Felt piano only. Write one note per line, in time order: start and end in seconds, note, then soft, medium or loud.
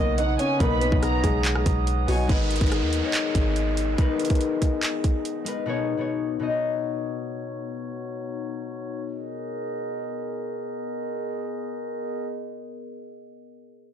0.00 0.15 A#3 medium
0.00 0.15 A#4 medium
0.18 0.36 D#4 medium
0.18 0.36 D#5 medium
0.39 0.57 C#4 medium
0.39 0.57 C#5 medium
0.60 0.78 A#3 medium
0.60 0.78 A#4 loud
0.81 1.21 B3 medium
0.81 1.21 B4 medium
1.23 2.04 G#3 medium
1.23 2.04 G#4 medium
2.08 2.26 F#3 medium
2.08 2.26 F#4 medium